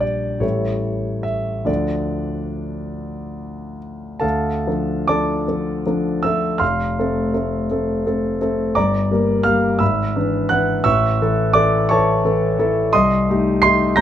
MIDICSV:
0, 0, Header, 1, 2, 480
1, 0, Start_track
1, 0, Key_signature, -1, "minor"
1, 0, Tempo, 794702
1, 503, Tempo, 841515
1, 983, Time_signature, 6, 3, 24, 8
1, 1943, Tempo, 869565
1, 2903, Tempo, 765306
1, 3383, Tempo, 729927
1, 4823, Tempo, 695249
1, 8937, End_track
2, 0, Start_track
2, 0, Title_t, "Grand piano"
2, 0, Program_c, 0, 0
2, 0, Control_c, 0, 64, 127
2, 0, Note_on_c, 0, 34, 40
2, 0, Note_on_c, 0, 55, 37
2, 0, Note_on_c, 0, 62, 35
2, 0, Note_on_c, 0, 67, 35
2, 0, Note_on_c, 0, 79, 70
2, 3, Note_on_c, 0, 74, 64
2, 229, Note_off_c, 0, 55, 0
2, 230, Note_off_c, 0, 34, 0
2, 231, Note_off_c, 0, 62, 0
2, 236, Note_off_c, 0, 67, 0
2, 241, Note_on_c, 0, 33, 39
2, 243, Note_on_c, 0, 55, 31
2, 243, Note_on_c, 0, 73, 53
2, 247, Note_on_c, 0, 64, 34
2, 250, Note_off_c, 0, 74, 0
2, 250, Note_on_c, 0, 69, 31
2, 269, Control_c, 0, 64, 0
2, 275, Note_off_c, 0, 79, 0
2, 380, Control_c, 0, 64, 127
2, 730, Note_on_c, 0, 76, 62
2, 733, Note_off_c, 0, 73, 0
2, 953, Note_off_c, 0, 33, 0
2, 954, Note_off_c, 0, 55, 0
2, 956, Note_off_c, 0, 64, 0
2, 957, Note_off_c, 0, 69, 0
2, 968, Note_on_c, 0, 38, 40
2, 973, Note_on_c, 0, 53, 32
2, 977, Note_on_c, 0, 74, 54
2, 978, Note_off_c, 0, 76, 0
2, 978, Note_on_c, 0, 62, 31
2, 980, Note_on_c, 0, 69, 34
2, 996, Control_c, 0, 64, 0
2, 1086, Control_c, 0, 64, 127
2, 2175, Note_off_c, 0, 74, 0
2, 2392, Note_off_c, 0, 38, 0
2, 2395, Note_off_c, 0, 53, 0
2, 2397, Note_off_c, 0, 62, 0
2, 2398, Note_off_c, 0, 69, 0
2, 2406, Note_on_c, 0, 81, 60
2, 2411, Note_on_c, 0, 77, 49
2, 2412, Note_on_c, 0, 69, 46
2, 2416, Note_on_c, 0, 38, 48
2, 2434, Control_c, 0, 64, 0
2, 2563, Control_c, 0, 64, 127
2, 2658, Note_off_c, 0, 38, 0
2, 2665, Note_off_c, 0, 69, 0
2, 2669, Note_on_c, 0, 53, 35
2, 2671, Note_on_c, 0, 62, 37
2, 2673, Note_on_c, 0, 69, 39
2, 2877, Note_off_c, 0, 77, 0
2, 2882, Note_off_c, 0, 53, 0
2, 2884, Note_off_c, 0, 62, 0
2, 2884, Note_off_c, 0, 69, 0
2, 2891, Note_on_c, 0, 86, 73
2, 2892, Note_off_c, 0, 81, 0
2, 2898, Note_on_c, 0, 53, 35
2, 2898, Note_on_c, 0, 74, 50
2, 2900, Note_on_c, 0, 81, 47
2, 2901, Note_on_c, 0, 62, 39
2, 2906, Note_on_c, 0, 69, 42
2, 3121, Note_off_c, 0, 53, 0
2, 3123, Note_off_c, 0, 62, 0
2, 3125, Note_off_c, 0, 69, 0
2, 3144, Note_on_c, 0, 53, 32
2, 3147, Note_on_c, 0, 69, 39
2, 3149, Note_on_c, 0, 62, 33
2, 3358, Note_off_c, 0, 53, 0
2, 3360, Note_off_c, 0, 69, 0
2, 3361, Note_off_c, 0, 62, 0
2, 3385, Note_on_c, 0, 53, 35
2, 3389, Note_on_c, 0, 62, 37
2, 3389, Note_on_c, 0, 69, 37
2, 3600, Note_off_c, 0, 74, 0
2, 3601, Note_off_c, 0, 81, 0
2, 3606, Note_off_c, 0, 53, 0
2, 3608, Note_off_c, 0, 62, 0
2, 3608, Note_off_c, 0, 69, 0
2, 3622, Note_off_c, 0, 86, 0
2, 3622, Note_on_c, 0, 88, 70
2, 3633, Note_on_c, 0, 76, 52
2, 3634, Note_on_c, 0, 53, 39
2, 3636, Note_on_c, 0, 62, 37
2, 3639, Note_on_c, 0, 69, 42
2, 3852, Note_off_c, 0, 53, 0
2, 3853, Note_off_c, 0, 62, 0
2, 3855, Note_off_c, 0, 69, 0
2, 3857, Note_on_c, 0, 89, 64
2, 3859, Note_off_c, 0, 76, 0
2, 3866, Note_on_c, 0, 84, 52
2, 3867, Note_on_c, 0, 77, 50
2, 3870, Note_off_c, 0, 88, 0
2, 3871, Note_on_c, 0, 29, 50
2, 3886, Control_c, 0, 64, 0
2, 3986, Control_c, 0, 64, 127
2, 4105, Note_off_c, 0, 29, 0
2, 4123, Note_on_c, 0, 57, 37
2, 4126, Note_on_c, 0, 60, 38
2, 4128, Note_on_c, 0, 69, 43
2, 4332, Note_off_c, 0, 57, 0
2, 4334, Note_off_c, 0, 60, 0
2, 4335, Note_off_c, 0, 69, 0
2, 4353, Note_on_c, 0, 57, 38
2, 4356, Note_on_c, 0, 69, 44
2, 4357, Note_on_c, 0, 60, 39
2, 4565, Note_off_c, 0, 57, 0
2, 4567, Note_off_c, 0, 60, 0
2, 4567, Note_off_c, 0, 69, 0
2, 4597, Note_on_c, 0, 57, 38
2, 4597, Note_on_c, 0, 60, 35
2, 4601, Note_on_c, 0, 69, 41
2, 4805, Note_off_c, 0, 57, 0
2, 4805, Note_off_c, 0, 60, 0
2, 4807, Note_off_c, 0, 69, 0
2, 4829, Note_on_c, 0, 57, 39
2, 4836, Note_on_c, 0, 69, 42
2, 4838, Note_on_c, 0, 60, 37
2, 5035, Note_off_c, 0, 84, 0
2, 5036, Note_off_c, 0, 77, 0
2, 5046, Note_off_c, 0, 57, 0
2, 5050, Note_off_c, 0, 69, 0
2, 5051, Note_off_c, 0, 60, 0
2, 5058, Note_off_c, 0, 89, 0
2, 5072, Note_on_c, 0, 60, 44
2, 5074, Note_on_c, 0, 57, 42
2, 5076, Note_on_c, 0, 69, 45
2, 5287, Note_off_c, 0, 60, 0
2, 5288, Note_off_c, 0, 57, 0
2, 5289, Note_off_c, 0, 69, 0
2, 5306, Note_on_c, 0, 86, 68
2, 5311, Note_on_c, 0, 82, 53
2, 5314, Note_on_c, 0, 74, 59
2, 5316, Note_on_c, 0, 31, 55
2, 5318, Control_c, 0, 64, 0
2, 5423, Control_c, 0, 64, 127
2, 5545, Note_off_c, 0, 31, 0
2, 5555, Note_on_c, 0, 55, 44
2, 5557, Note_on_c, 0, 58, 42
2, 5558, Note_on_c, 0, 70, 46
2, 5762, Note_off_c, 0, 82, 0
2, 5764, Note_off_c, 0, 74, 0
2, 5768, Note_off_c, 0, 55, 0
2, 5769, Note_off_c, 0, 58, 0
2, 5770, Note_off_c, 0, 70, 0
2, 5778, Note_on_c, 0, 89, 80
2, 5785, Note_on_c, 0, 77, 58
2, 5787, Note_off_c, 0, 86, 0
2, 5789, Note_on_c, 0, 55, 45
2, 5795, Note_on_c, 0, 58, 45
2, 5795, Note_on_c, 0, 70, 49
2, 6009, Note_off_c, 0, 55, 0
2, 6012, Note_off_c, 0, 58, 0
2, 6012, Note_off_c, 0, 70, 0
2, 6014, Note_off_c, 0, 77, 0
2, 6021, Note_on_c, 0, 88, 66
2, 6028, Note_off_c, 0, 89, 0
2, 6031, Note_on_c, 0, 32, 52
2, 6031, Note_on_c, 0, 83, 51
2, 6033, Note_on_c, 0, 76, 49
2, 6043, Control_c, 0, 64, 0
2, 6170, Control_c, 0, 64, 127
2, 6269, Note_off_c, 0, 32, 0
2, 6280, Note_on_c, 0, 62, 45
2, 6283, Note_on_c, 0, 52, 44
2, 6283, Note_on_c, 0, 71, 46
2, 6490, Note_off_c, 0, 83, 0
2, 6491, Note_off_c, 0, 76, 0
2, 6495, Note_off_c, 0, 62, 0
2, 6497, Note_off_c, 0, 52, 0
2, 6497, Note_off_c, 0, 71, 0
2, 6507, Note_on_c, 0, 90, 79
2, 6512, Note_off_c, 0, 88, 0
2, 6516, Note_on_c, 0, 78, 64
2, 6521, Note_on_c, 0, 52, 47
2, 6523, Note_on_c, 0, 62, 46
2, 6527, Note_on_c, 0, 71, 49
2, 6734, Note_off_c, 0, 52, 0
2, 6735, Note_off_c, 0, 62, 0
2, 6737, Note_off_c, 0, 71, 0
2, 6738, Note_off_c, 0, 78, 0
2, 6747, Note_on_c, 0, 88, 83
2, 6750, Note_off_c, 0, 90, 0
2, 6750, Note_on_c, 0, 76, 66
2, 6752, Note_on_c, 0, 85, 62
2, 6757, Note_on_c, 0, 33, 65
2, 6767, Control_c, 0, 64, 0
2, 6885, Control_c, 0, 64, 127
2, 6989, Note_off_c, 0, 33, 0
2, 7009, Note_on_c, 0, 52, 44
2, 7010, Note_on_c, 0, 69, 52
2, 7012, Note_on_c, 0, 64, 49
2, 7205, Note_off_c, 0, 76, 0
2, 7207, Note_off_c, 0, 85, 0
2, 7220, Note_off_c, 0, 52, 0
2, 7220, Note_off_c, 0, 69, 0
2, 7221, Note_off_c, 0, 64, 0
2, 7228, Note_on_c, 0, 86, 91
2, 7232, Note_off_c, 0, 88, 0
2, 7236, Note_on_c, 0, 74, 65
2, 7239, Note_on_c, 0, 52, 52
2, 7243, Note_on_c, 0, 69, 55
2, 7245, Note_on_c, 0, 64, 47
2, 7452, Note_off_c, 0, 52, 0
2, 7455, Note_off_c, 0, 69, 0
2, 7456, Note_off_c, 0, 64, 0
2, 7458, Note_off_c, 0, 74, 0
2, 7471, Note_off_c, 0, 86, 0
2, 7472, Note_on_c, 0, 85, 80
2, 7483, Note_on_c, 0, 73, 67
2, 7486, Note_on_c, 0, 81, 61
2, 7490, Note_on_c, 0, 52, 45
2, 7490, Note_on_c, 0, 64, 47
2, 7493, Note_on_c, 0, 69, 50
2, 7697, Note_off_c, 0, 52, 0
2, 7697, Note_off_c, 0, 64, 0
2, 7699, Note_off_c, 0, 69, 0
2, 7720, Note_on_c, 0, 52, 47
2, 7724, Note_on_c, 0, 69, 53
2, 7725, Note_on_c, 0, 64, 46
2, 7931, Note_off_c, 0, 52, 0
2, 7933, Note_off_c, 0, 64, 0
2, 7933, Note_off_c, 0, 69, 0
2, 7957, Note_on_c, 0, 52, 51
2, 7957, Note_on_c, 0, 64, 52
2, 7960, Note_on_c, 0, 69, 55
2, 8164, Note_off_c, 0, 73, 0
2, 8166, Note_off_c, 0, 81, 0
2, 8168, Note_off_c, 0, 52, 0
2, 8168, Note_off_c, 0, 64, 0
2, 8169, Note_off_c, 0, 69, 0
2, 8187, Note_off_c, 0, 85, 0
2, 8189, Note_on_c, 0, 87, 87
2, 8191, Note_on_c, 0, 84, 68
2, 8192, Note_on_c, 0, 75, 63
2, 8198, Note_on_c, 0, 36, 67
2, 8199, Control_c, 0, 64, 0
2, 8294, Control_c, 0, 64, 127
2, 8425, Note_off_c, 0, 36, 0
2, 8440, Note_on_c, 0, 57, 53
2, 8448, Note_on_c, 0, 63, 53
2, 8448, Note_on_c, 0, 67, 53
2, 8639, Note_off_c, 0, 84, 0
2, 8640, Note_off_c, 0, 75, 0
2, 8648, Note_off_c, 0, 57, 0
2, 8653, Note_off_c, 0, 63, 0
2, 8653, Note_off_c, 0, 67, 0
2, 8665, Note_off_c, 0, 87, 0
2, 8665, Note_on_c, 0, 96, 101
2, 8672, Note_on_c, 0, 84, 74
2, 8674, Note_on_c, 0, 57, 53
2, 8680, Note_on_c, 0, 63, 54
2, 8685, Note_on_c, 0, 67, 57
2, 8884, Note_off_c, 0, 57, 0
2, 8887, Note_off_c, 0, 63, 0
2, 8889, Note_off_c, 0, 67, 0
2, 8890, Note_off_c, 0, 84, 0
2, 8901, Note_on_c, 0, 94, 82
2, 8903, Note_off_c, 0, 96, 0
2, 8907, Note_on_c, 0, 82, 71
2, 8907, Note_on_c, 0, 91, 71
2, 8913, Control_c, 0, 64, 0
2, 8914, Note_on_c, 0, 37, 58
2, 8937, Note_off_c, 0, 37, 0
2, 8937, Note_off_c, 0, 82, 0
2, 8937, Note_off_c, 0, 91, 0
2, 8937, Note_off_c, 0, 94, 0
2, 8937, End_track
0, 0, End_of_file